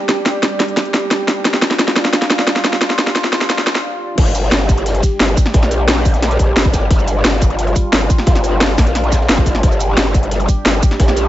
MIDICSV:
0, 0, Header, 1, 4, 480
1, 0, Start_track
1, 0, Key_signature, -2, "minor"
1, 0, Tempo, 340909
1, 122, Time_signature, 4, 2, 24, 8
1, 15885, End_track
2, 0, Start_track
2, 0, Title_t, "Analog synth pad"
2, 0, Program_c, 0, 89
2, 0, Note_on_c, 0, 55, 78
2, 0, Note_on_c, 0, 62, 72
2, 0, Note_on_c, 0, 67, 88
2, 2029, Note_off_c, 0, 67, 0
2, 2043, Note_on_c, 0, 65, 86
2, 5826, Note_off_c, 0, 55, 0
2, 5827, Note_off_c, 0, 62, 0
2, 5868, Note_off_c, 0, 65, 0
2, 5882, Note_on_c, 0, 67, 91
2, 5883, Note_on_c, 0, 55, 78
2, 5883, Note_on_c, 0, 62, 72
2, 9708, Note_off_c, 0, 67, 0
2, 9724, Note_on_c, 0, 65, 91
2, 13549, Note_off_c, 0, 65, 0
2, 13563, Note_on_c, 0, 67, 90
2, 15885, Note_off_c, 0, 55, 0
2, 15885, Note_off_c, 0, 62, 0
2, 15885, Note_off_c, 0, 67, 0
2, 15885, End_track
3, 0, Start_track
3, 0, Title_t, "Wobble bass"
3, 0, Program_c, 1, 39
3, 5883, Note_on_c, 1, 31, 96
3, 6344, Note_off_c, 1, 31, 0
3, 6364, Note_on_c, 1, 31, 99
3, 7064, Note_off_c, 1, 31, 0
3, 7324, Note_on_c, 1, 31, 94
3, 7544, Note_off_c, 1, 31, 0
3, 7803, Note_on_c, 1, 34, 94
3, 8984, Note_off_c, 1, 34, 0
3, 9003, Note_on_c, 1, 34, 99
3, 9224, Note_off_c, 1, 34, 0
3, 9243, Note_on_c, 1, 31, 98
3, 9464, Note_off_c, 1, 31, 0
3, 9483, Note_on_c, 1, 31, 101
3, 9704, Note_off_c, 1, 31, 0
3, 9723, Note_on_c, 1, 31, 99
3, 10184, Note_off_c, 1, 31, 0
3, 10203, Note_on_c, 1, 31, 103
3, 10904, Note_off_c, 1, 31, 0
3, 11163, Note_on_c, 1, 31, 89
3, 11384, Note_off_c, 1, 31, 0
3, 11643, Note_on_c, 1, 31, 97
3, 12344, Note_off_c, 1, 31, 0
3, 12363, Note_on_c, 1, 34, 100
3, 13064, Note_off_c, 1, 34, 0
3, 13083, Note_on_c, 1, 31, 96
3, 13544, Note_off_c, 1, 31, 0
3, 13563, Note_on_c, 1, 31, 102
3, 14024, Note_off_c, 1, 31, 0
3, 14043, Note_on_c, 1, 31, 95
3, 14744, Note_off_c, 1, 31, 0
3, 15003, Note_on_c, 1, 31, 92
3, 15224, Note_off_c, 1, 31, 0
3, 15483, Note_on_c, 1, 34, 95
3, 15885, Note_off_c, 1, 34, 0
3, 15885, End_track
4, 0, Start_track
4, 0, Title_t, "Drums"
4, 123, Note_on_c, 9, 38, 85
4, 123, Note_on_c, 9, 42, 95
4, 263, Note_off_c, 9, 38, 0
4, 263, Note_off_c, 9, 42, 0
4, 363, Note_on_c, 9, 38, 90
4, 363, Note_on_c, 9, 42, 70
4, 503, Note_off_c, 9, 38, 0
4, 503, Note_off_c, 9, 42, 0
4, 603, Note_on_c, 9, 38, 87
4, 603, Note_on_c, 9, 42, 91
4, 744, Note_off_c, 9, 38, 0
4, 744, Note_off_c, 9, 42, 0
4, 843, Note_on_c, 9, 38, 83
4, 843, Note_on_c, 9, 42, 64
4, 963, Note_off_c, 9, 42, 0
4, 963, Note_on_c, 9, 42, 36
4, 984, Note_off_c, 9, 38, 0
4, 1083, Note_off_c, 9, 42, 0
4, 1083, Note_on_c, 9, 38, 83
4, 1083, Note_on_c, 9, 42, 90
4, 1203, Note_off_c, 9, 42, 0
4, 1203, Note_on_c, 9, 42, 35
4, 1224, Note_off_c, 9, 38, 0
4, 1322, Note_off_c, 9, 42, 0
4, 1322, Note_on_c, 9, 38, 91
4, 1322, Note_on_c, 9, 42, 66
4, 1463, Note_off_c, 9, 38, 0
4, 1463, Note_off_c, 9, 42, 0
4, 1562, Note_on_c, 9, 38, 90
4, 1562, Note_on_c, 9, 42, 98
4, 1703, Note_off_c, 9, 38, 0
4, 1703, Note_off_c, 9, 42, 0
4, 1803, Note_on_c, 9, 38, 91
4, 1803, Note_on_c, 9, 42, 70
4, 1943, Note_off_c, 9, 38, 0
4, 1943, Note_off_c, 9, 42, 0
4, 2043, Note_on_c, 9, 38, 98
4, 2043, Note_on_c, 9, 42, 97
4, 2163, Note_off_c, 9, 38, 0
4, 2163, Note_on_c, 9, 38, 85
4, 2183, Note_off_c, 9, 42, 0
4, 2283, Note_off_c, 9, 38, 0
4, 2283, Note_on_c, 9, 38, 99
4, 2283, Note_on_c, 9, 42, 68
4, 2403, Note_off_c, 9, 38, 0
4, 2403, Note_on_c, 9, 38, 83
4, 2423, Note_off_c, 9, 42, 0
4, 2523, Note_off_c, 9, 38, 0
4, 2523, Note_on_c, 9, 38, 98
4, 2523, Note_on_c, 9, 42, 99
4, 2643, Note_off_c, 9, 38, 0
4, 2643, Note_on_c, 9, 38, 81
4, 2663, Note_off_c, 9, 42, 0
4, 2763, Note_off_c, 9, 38, 0
4, 2763, Note_on_c, 9, 38, 95
4, 2763, Note_on_c, 9, 42, 68
4, 2883, Note_off_c, 9, 38, 0
4, 2883, Note_off_c, 9, 42, 0
4, 2883, Note_on_c, 9, 38, 86
4, 2883, Note_on_c, 9, 42, 37
4, 3003, Note_off_c, 9, 38, 0
4, 3003, Note_off_c, 9, 42, 0
4, 3003, Note_on_c, 9, 38, 96
4, 3003, Note_on_c, 9, 42, 96
4, 3123, Note_off_c, 9, 38, 0
4, 3123, Note_off_c, 9, 42, 0
4, 3123, Note_on_c, 9, 38, 84
4, 3123, Note_on_c, 9, 42, 37
4, 3243, Note_off_c, 9, 38, 0
4, 3243, Note_off_c, 9, 42, 0
4, 3243, Note_on_c, 9, 38, 105
4, 3243, Note_on_c, 9, 42, 70
4, 3363, Note_off_c, 9, 38, 0
4, 3363, Note_on_c, 9, 38, 92
4, 3384, Note_off_c, 9, 42, 0
4, 3483, Note_off_c, 9, 38, 0
4, 3483, Note_on_c, 9, 38, 102
4, 3483, Note_on_c, 9, 42, 96
4, 3602, Note_off_c, 9, 38, 0
4, 3602, Note_on_c, 9, 38, 88
4, 3623, Note_off_c, 9, 42, 0
4, 3723, Note_off_c, 9, 38, 0
4, 3723, Note_on_c, 9, 38, 102
4, 3723, Note_on_c, 9, 42, 74
4, 3842, Note_off_c, 9, 38, 0
4, 3842, Note_on_c, 9, 38, 85
4, 3864, Note_off_c, 9, 42, 0
4, 3962, Note_off_c, 9, 38, 0
4, 3962, Note_on_c, 9, 38, 106
4, 3962, Note_on_c, 9, 42, 102
4, 4082, Note_off_c, 9, 38, 0
4, 4082, Note_off_c, 9, 42, 0
4, 4082, Note_on_c, 9, 38, 86
4, 4082, Note_on_c, 9, 42, 38
4, 4203, Note_off_c, 9, 38, 0
4, 4203, Note_off_c, 9, 42, 0
4, 4203, Note_on_c, 9, 38, 107
4, 4203, Note_on_c, 9, 42, 77
4, 4322, Note_off_c, 9, 38, 0
4, 4322, Note_on_c, 9, 38, 90
4, 4344, Note_off_c, 9, 42, 0
4, 4442, Note_off_c, 9, 38, 0
4, 4442, Note_on_c, 9, 38, 106
4, 4442, Note_on_c, 9, 42, 103
4, 4563, Note_off_c, 9, 38, 0
4, 4563, Note_on_c, 9, 38, 94
4, 4583, Note_off_c, 9, 42, 0
4, 4683, Note_off_c, 9, 38, 0
4, 4683, Note_on_c, 9, 38, 101
4, 4683, Note_on_c, 9, 42, 68
4, 4803, Note_off_c, 9, 38, 0
4, 4803, Note_off_c, 9, 42, 0
4, 4803, Note_on_c, 9, 38, 94
4, 4803, Note_on_c, 9, 42, 39
4, 4923, Note_off_c, 9, 38, 0
4, 4923, Note_off_c, 9, 42, 0
4, 4923, Note_on_c, 9, 38, 102
4, 4923, Note_on_c, 9, 42, 94
4, 5043, Note_off_c, 9, 38, 0
4, 5043, Note_off_c, 9, 42, 0
4, 5043, Note_on_c, 9, 38, 95
4, 5043, Note_on_c, 9, 42, 38
4, 5163, Note_off_c, 9, 38, 0
4, 5163, Note_off_c, 9, 42, 0
4, 5163, Note_on_c, 9, 38, 108
4, 5163, Note_on_c, 9, 42, 69
4, 5283, Note_off_c, 9, 38, 0
4, 5283, Note_on_c, 9, 38, 105
4, 5304, Note_off_c, 9, 42, 0
4, 5423, Note_off_c, 9, 38, 0
4, 5883, Note_on_c, 9, 36, 119
4, 5883, Note_on_c, 9, 42, 101
4, 5883, Note_on_c, 9, 49, 106
4, 5891, Note_off_c, 9, 42, 0
4, 5891, Note_on_c, 9, 42, 88
4, 6003, Note_on_c, 9, 82, 27
4, 6023, Note_off_c, 9, 49, 0
4, 6024, Note_off_c, 9, 36, 0
4, 6031, Note_off_c, 9, 42, 0
4, 6116, Note_on_c, 9, 42, 65
4, 6123, Note_off_c, 9, 42, 0
4, 6123, Note_off_c, 9, 82, 0
4, 6123, Note_on_c, 9, 42, 74
4, 6123, Note_on_c, 9, 82, 66
4, 6263, Note_off_c, 9, 42, 0
4, 6263, Note_off_c, 9, 82, 0
4, 6358, Note_on_c, 9, 42, 79
4, 6363, Note_off_c, 9, 42, 0
4, 6363, Note_on_c, 9, 38, 115
4, 6363, Note_on_c, 9, 42, 101
4, 6366, Note_off_c, 9, 38, 0
4, 6366, Note_on_c, 9, 38, 124
4, 6478, Note_off_c, 9, 38, 0
4, 6478, Note_on_c, 9, 38, 53
4, 6504, Note_off_c, 9, 42, 0
4, 6602, Note_on_c, 9, 42, 74
4, 6603, Note_off_c, 9, 42, 0
4, 6603, Note_on_c, 9, 36, 106
4, 6603, Note_on_c, 9, 42, 71
4, 6603, Note_on_c, 9, 82, 58
4, 6619, Note_off_c, 9, 38, 0
4, 6723, Note_off_c, 9, 42, 0
4, 6723, Note_on_c, 9, 42, 39
4, 6744, Note_off_c, 9, 36, 0
4, 6744, Note_off_c, 9, 82, 0
4, 6843, Note_off_c, 9, 42, 0
4, 6843, Note_on_c, 9, 42, 95
4, 6849, Note_off_c, 9, 42, 0
4, 6849, Note_on_c, 9, 42, 89
4, 6963, Note_off_c, 9, 42, 0
4, 6963, Note_on_c, 9, 42, 45
4, 6964, Note_off_c, 9, 42, 0
4, 6964, Note_on_c, 9, 42, 39
4, 7078, Note_off_c, 9, 42, 0
4, 7078, Note_on_c, 9, 42, 67
4, 7083, Note_on_c, 9, 36, 62
4, 7084, Note_off_c, 9, 42, 0
4, 7084, Note_on_c, 9, 42, 72
4, 7084, Note_on_c, 9, 82, 62
4, 7224, Note_off_c, 9, 36, 0
4, 7225, Note_off_c, 9, 42, 0
4, 7225, Note_off_c, 9, 82, 0
4, 7321, Note_on_c, 9, 42, 83
4, 7323, Note_off_c, 9, 42, 0
4, 7323, Note_on_c, 9, 38, 118
4, 7323, Note_on_c, 9, 42, 94
4, 7328, Note_off_c, 9, 38, 0
4, 7328, Note_on_c, 9, 38, 115
4, 7464, Note_off_c, 9, 42, 0
4, 7469, Note_off_c, 9, 38, 0
4, 7563, Note_on_c, 9, 36, 107
4, 7564, Note_on_c, 9, 42, 74
4, 7564, Note_on_c, 9, 82, 63
4, 7575, Note_off_c, 9, 42, 0
4, 7575, Note_on_c, 9, 42, 71
4, 7669, Note_on_c, 9, 38, 44
4, 7683, Note_on_c, 9, 40, 37
4, 7704, Note_off_c, 9, 36, 0
4, 7704, Note_off_c, 9, 82, 0
4, 7716, Note_off_c, 9, 42, 0
4, 7795, Note_on_c, 9, 42, 83
4, 7803, Note_off_c, 9, 42, 0
4, 7803, Note_on_c, 9, 36, 118
4, 7803, Note_on_c, 9, 42, 95
4, 7810, Note_off_c, 9, 38, 0
4, 7824, Note_off_c, 9, 40, 0
4, 7923, Note_on_c, 9, 40, 37
4, 7923, Note_on_c, 9, 82, 27
4, 7943, Note_off_c, 9, 36, 0
4, 7944, Note_off_c, 9, 42, 0
4, 8039, Note_on_c, 9, 42, 70
4, 8043, Note_off_c, 9, 42, 0
4, 8043, Note_off_c, 9, 82, 0
4, 8043, Note_on_c, 9, 42, 74
4, 8043, Note_on_c, 9, 82, 60
4, 8064, Note_off_c, 9, 40, 0
4, 8184, Note_off_c, 9, 42, 0
4, 8184, Note_off_c, 9, 82, 0
4, 8283, Note_on_c, 9, 38, 127
4, 8283, Note_on_c, 9, 42, 97
4, 8289, Note_off_c, 9, 42, 0
4, 8289, Note_on_c, 9, 42, 94
4, 8402, Note_off_c, 9, 38, 0
4, 8402, Note_on_c, 9, 38, 49
4, 8430, Note_off_c, 9, 42, 0
4, 8522, Note_on_c, 9, 42, 64
4, 8523, Note_on_c, 9, 36, 110
4, 8523, Note_on_c, 9, 46, 77
4, 8523, Note_on_c, 9, 82, 53
4, 8543, Note_off_c, 9, 38, 0
4, 8643, Note_off_c, 9, 42, 0
4, 8643, Note_on_c, 9, 42, 37
4, 8650, Note_on_c, 9, 38, 45
4, 8663, Note_off_c, 9, 36, 0
4, 8664, Note_off_c, 9, 46, 0
4, 8664, Note_off_c, 9, 82, 0
4, 8761, Note_off_c, 9, 38, 0
4, 8761, Note_on_c, 9, 38, 120
4, 8764, Note_off_c, 9, 42, 0
4, 8764, Note_on_c, 9, 40, 59
4, 8764, Note_on_c, 9, 42, 83
4, 8877, Note_off_c, 9, 38, 0
4, 8877, Note_on_c, 9, 38, 51
4, 8883, Note_off_c, 9, 42, 0
4, 8883, Note_on_c, 9, 42, 37
4, 8905, Note_off_c, 9, 40, 0
4, 8997, Note_off_c, 9, 42, 0
4, 8997, Note_on_c, 9, 42, 58
4, 9003, Note_off_c, 9, 42, 0
4, 9003, Note_on_c, 9, 36, 66
4, 9003, Note_on_c, 9, 42, 70
4, 9003, Note_on_c, 9, 82, 60
4, 9018, Note_off_c, 9, 38, 0
4, 9144, Note_off_c, 9, 36, 0
4, 9144, Note_off_c, 9, 42, 0
4, 9144, Note_off_c, 9, 82, 0
4, 9243, Note_on_c, 9, 38, 127
4, 9243, Note_on_c, 9, 42, 93
4, 9363, Note_on_c, 9, 36, 113
4, 9384, Note_off_c, 9, 38, 0
4, 9384, Note_off_c, 9, 42, 0
4, 9474, Note_on_c, 9, 38, 98
4, 9482, Note_on_c, 9, 42, 78
4, 9483, Note_off_c, 9, 36, 0
4, 9483, Note_off_c, 9, 42, 0
4, 9483, Note_on_c, 9, 36, 64
4, 9483, Note_on_c, 9, 42, 71
4, 9483, Note_on_c, 9, 82, 60
4, 9615, Note_off_c, 9, 38, 0
4, 9624, Note_off_c, 9, 36, 0
4, 9624, Note_off_c, 9, 42, 0
4, 9624, Note_off_c, 9, 82, 0
4, 9723, Note_on_c, 9, 36, 125
4, 9723, Note_on_c, 9, 42, 92
4, 9726, Note_off_c, 9, 42, 0
4, 9726, Note_on_c, 9, 42, 97
4, 9843, Note_on_c, 9, 82, 27
4, 9864, Note_off_c, 9, 36, 0
4, 9867, Note_off_c, 9, 42, 0
4, 9960, Note_on_c, 9, 42, 76
4, 9963, Note_off_c, 9, 42, 0
4, 9963, Note_off_c, 9, 82, 0
4, 9963, Note_on_c, 9, 42, 71
4, 9963, Note_on_c, 9, 82, 61
4, 10104, Note_off_c, 9, 42, 0
4, 10104, Note_off_c, 9, 82, 0
4, 10203, Note_on_c, 9, 38, 126
4, 10203, Note_on_c, 9, 42, 92
4, 10208, Note_off_c, 9, 38, 0
4, 10208, Note_on_c, 9, 38, 127
4, 10209, Note_off_c, 9, 42, 0
4, 10209, Note_on_c, 9, 42, 87
4, 10317, Note_off_c, 9, 38, 0
4, 10317, Note_on_c, 9, 38, 64
4, 10350, Note_off_c, 9, 42, 0
4, 10435, Note_on_c, 9, 42, 76
4, 10443, Note_off_c, 9, 42, 0
4, 10443, Note_on_c, 9, 36, 113
4, 10443, Note_on_c, 9, 42, 62
4, 10443, Note_on_c, 9, 82, 56
4, 10458, Note_off_c, 9, 38, 0
4, 10563, Note_off_c, 9, 42, 0
4, 10563, Note_on_c, 9, 42, 35
4, 10584, Note_off_c, 9, 36, 0
4, 10584, Note_off_c, 9, 82, 0
4, 10680, Note_off_c, 9, 42, 0
4, 10680, Note_on_c, 9, 42, 82
4, 10683, Note_off_c, 9, 42, 0
4, 10683, Note_on_c, 9, 42, 85
4, 10803, Note_off_c, 9, 42, 0
4, 10803, Note_on_c, 9, 42, 35
4, 10807, Note_off_c, 9, 42, 0
4, 10807, Note_on_c, 9, 42, 45
4, 10923, Note_on_c, 9, 36, 71
4, 10924, Note_off_c, 9, 42, 0
4, 10924, Note_on_c, 9, 42, 64
4, 10924, Note_on_c, 9, 82, 59
4, 10925, Note_off_c, 9, 42, 0
4, 10925, Note_on_c, 9, 42, 76
4, 11064, Note_off_c, 9, 36, 0
4, 11064, Note_off_c, 9, 82, 0
4, 11066, Note_off_c, 9, 42, 0
4, 11159, Note_on_c, 9, 38, 118
4, 11163, Note_off_c, 9, 38, 0
4, 11163, Note_on_c, 9, 38, 127
4, 11163, Note_on_c, 9, 42, 94
4, 11167, Note_off_c, 9, 42, 0
4, 11167, Note_on_c, 9, 42, 93
4, 11304, Note_off_c, 9, 38, 0
4, 11308, Note_off_c, 9, 42, 0
4, 11400, Note_on_c, 9, 42, 73
4, 11403, Note_on_c, 9, 36, 108
4, 11404, Note_off_c, 9, 42, 0
4, 11404, Note_on_c, 9, 42, 67
4, 11404, Note_on_c, 9, 82, 61
4, 11523, Note_on_c, 9, 40, 35
4, 11526, Note_on_c, 9, 38, 51
4, 11544, Note_off_c, 9, 36, 0
4, 11544, Note_off_c, 9, 42, 0
4, 11544, Note_off_c, 9, 82, 0
4, 11636, Note_on_c, 9, 42, 86
4, 11643, Note_off_c, 9, 42, 0
4, 11643, Note_on_c, 9, 36, 127
4, 11643, Note_on_c, 9, 42, 88
4, 11664, Note_off_c, 9, 40, 0
4, 11667, Note_off_c, 9, 38, 0
4, 11763, Note_on_c, 9, 40, 35
4, 11763, Note_on_c, 9, 82, 27
4, 11784, Note_off_c, 9, 36, 0
4, 11784, Note_off_c, 9, 42, 0
4, 11877, Note_on_c, 9, 42, 68
4, 11883, Note_off_c, 9, 42, 0
4, 11883, Note_off_c, 9, 82, 0
4, 11883, Note_on_c, 9, 42, 67
4, 11883, Note_on_c, 9, 82, 61
4, 11904, Note_off_c, 9, 40, 0
4, 12024, Note_off_c, 9, 42, 0
4, 12024, Note_off_c, 9, 82, 0
4, 12110, Note_on_c, 9, 38, 127
4, 12114, Note_on_c, 9, 42, 84
4, 12123, Note_off_c, 9, 38, 0
4, 12123, Note_off_c, 9, 42, 0
4, 12123, Note_on_c, 9, 38, 127
4, 12123, Note_on_c, 9, 42, 92
4, 12240, Note_off_c, 9, 38, 0
4, 12240, Note_on_c, 9, 38, 51
4, 12264, Note_off_c, 9, 42, 0
4, 12355, Note_on_c, 9, 42, 76
4, 12363, Note_on_c, 9, 36, 114
4, 12363, Note_on_c, 9, 40, 54
4, 12363, Note_on_c, 9, 46, 81
4, 12363, Note_on_c, 9, 82, 58
4, 12381, Note_off_c, 9, 38, 0
4, 12472, Note_on_c, 9, 38, 44
4, 12483, Note_off_c, 9, 42, 0
4, 12483, Note_on_c, 9, 42, 33
4, 12504, Note_off_c, 9, 36, 0
4, 12504, Note_off_c, 9, 40, 0
4, 12504, Note_off_c, 9, 46, 0
4, 12504, Note_off_c, 9, 82, 0
4, 12603, Note_off_c, 9, 42, 0
4, 12603, Note_on_c, 9, 40, 54
4, 12603, Note_on_c, 9, 42, 82
4, 12608, Note_off_c, 9, 42, 0
4, 12608, Note_on_c, 9, 42, 85
4, 12612, Note_off_c, 9, 38, 0
4, 12723, Note_off_c, 9, 42, 0
4, 12723, Note_on_c, 9, 42, 34
4, 12744, Note_off_c, 9, 40, 0
4, 12837, Note_off_c, 9, 42, 0
4, 12837, Note_on_c, 9, 42, 76
4, 12843, Note_off_c, 9, 42, 0
4, 12843, Note_on_c, 9, 36, 67
4, 12843, Note_on_c, 9, 42, 65
4, 12843, Note_on_c, 9, 82, 62
4, 12845, Note_on_c, 9, 38, 110
4, 12969, Note_off_c, 9, 38, 0
4, 12969, Note_on_c, 9, 38, 48
4, 12984, Note_off_c, 9, 36, 0
4, 12984, Note_off_c, 9, 42, 0
4, 12984, Note_off_c, 9, 82, 0
4, 13079, Note_off_c, 9, 38, 0
4, 13079, Note_on_c, 9, 38, 109
4, 13080, Note_on_c, 9, 42, 70
4, 13083, Note_off_c, 9, 38, 0
4, 13083, Note_off_c, 9, 42, 0
4, 13083, Note_on_c, 9, 38, 119
4, 13083, Note_on_c, 9, 42, 94
4, 13203, Note_on_c, 9, 36, 109
4, 13224, Note_off_c, 9, 38, 0
4, 13224, Note_off_c, 9, 42, 0
4, 13322, Note_on_c, 9, 42, 64
4, 13322, Note_on_c, 9, 82, 62
4, 13323, Note_off_c, 9, 36, 0
4, 13323, Note_on_c, 9, 36, 62
4, 13330, Note_off_c, 9, 42, 0
4, 13330, Note_on_c, 9, 42, 64
4, 13443, Note_off_c, 9, 42, 0
4, 13443, Note_on_c, 9, 40, 35
4, 13443, Note_on_c, 9, 42, 33
4, 13463, Note_off_c, 9, 82, 0
4, 13464, Note_off_c, 9, 36, 0
4, 13563, Note_off_c, 9, 42, 0
4, 13563, Note_on_c, 9, 36, 120
4, 13563, Note_on_c, 9, 42, 90
4, 13570, Note_off_c, 9, 42, 0
4, 13570, Note_on_c, 9, 42, 85
4, 13583, Note_off_c, 9, 40, 0
4, 13683, Note_on_c, 9, 82, 28
4, 13704, Note_off_c, 9, 36, 0
4, 13711, Note_off_c, 9, 42, 0
4, 13803, Note_off_c, 9, 82, 0
4, 13803, Note_on_c, 9, 42, 66
4, 13803, Note_on_c, 9, 82, 63
4, 13804, Note_off_c, 9, 42, 0
4, 13804, Note_on_c, 9, 42, 70
4, 13944, Note_off_c, 9, 82, 0
4, 13945, Note_off_c, 9, 42, 0
4, 14037, Note_on_c, 9, 42, 86
4, 14041, Note_on_c, 9, 38, 114
4, 14043, Note_off_c, 9, 38, 0
4, 14043, Note_off_c, 9, 42, 0
4, 14043, Note_on_c, 9, 38, 117
4, 14043, Note_on_c, 9, 42, 90
4, 14171, Note_off_c, 9, 38, 0
4, 14171, Note_on_c, 9, 38, 55
4, 14184, Note_off_c, 9, 42, 0
4, 14283, Note_on_c, 9, 36, 112
4, 14283, Note_on_c, 9, 42, 63
4, 14283, Note_on_c, 9, 82, 60
4, 14286, Note_off_c, 9, 42, 0
4, 14286, Note_on_c, 9, 42, 69
4, 14311, Note_off_c, 9, 38, 0
4, 14403, Note_off_c, 9, 42, 0
4, 14403, Note_on_c, 9, 42, 36
4, 14424, Note_off_c, 9, 36, 0
4, 14424, Note_off_c, 9, 82, 0
4, 14520, Note_off_c, 9, 42, 0
4, 14520, Note_on_c, 9, 42, 85
4, 14523, Note_off_c, 9, 42, 0
4, 14523, Note_on_c, 9, 42, 89
4, 14642, Note_off_c, 9, 42, 0
4, 14642, Note_on_c, 9, 42, 43
4, 14643, Note_off_c, 9, 42, 0
4, 14643, Note_on_c, 9, 42, 36
4, 14761, Note_off_c, 9, 42, 0
4, 14761, Note_on_c, 9, 42, 63
4, 14763, Note_off_c, 9, 42, 0
4, 14763, Note_on_c, 9, 36, 63
4, 14763, Note_on_c, 9, 42, 68
4, 14763, Note_on_c, 9, 82, 61
4, 14904, Note_off_c, 9, 36, 0
4, 14904, Note_off_c, 9, 42, 0
4, 14904, Note_off_c, 9, 82, 0
4, 15003, Note_on_c, 9, 38, 121
4, 15003, Note_on_c, 9, 42, 93
4, 15144, Note_off_c, 9, 38, 0
4, 15144, Note_off_c, 9, 42, 0
4, 15240, Note_on_c, 9, 42, 67
4, 15243, Note_off_c, 9, 42, 0
4, 15243, Note_on_c, 9, 36, 111
4, 15243, Note_on_c, 9, 42, 66
4, 15243, Note_on_c, 9, 82, 65
4, 15363, Note_on_c, 9, 40, 35
4, 15367, Note_on_c, 9, 38, 52
4, 15384, Note_off_c, 9, 36, 0
4, 15384, Note_off_c, 9, 42, 0
4, 15384, Note_off_c, 9, 82, 0
4, 15483, Note_on_c, 9, 36, 114
4, 15483, Note_on_c, 9, 42, 94
4, 15490, Note_off_c, 9, 42, 0
4, 15490, Note_on_c, 9, 42, 98
4, 15504, Note_off_c, 9, 40, 0
4, 15508, Note_off_c, 9, 38, 0
4, 15603, Note_on_c, 9, 40, 33
4, 15603, Note_on_c, 9, 82, 27
4, 15624, Note_off_c, 9, 36, 0
4, 15631, Note_off_c, 9, 42, 0
4, 15721, Note_on_c, 9, 42, 75
4, 15723, Note_off_c, 9, 42, 0
4, 15723, Note_off_c, 9, 82, 0
4, 15723, Note_on_c, 9, 42, 66
4, 15723, Note_on_c, 9, 82, 67
4, 15744, Note_off_c, 9, 40, 0
4, 15864, Note_off_c, 9, 42, 0
4, 15864, Note_off_c, 9, 82, 0
4, 15885, End_track
0, 0, End_of_file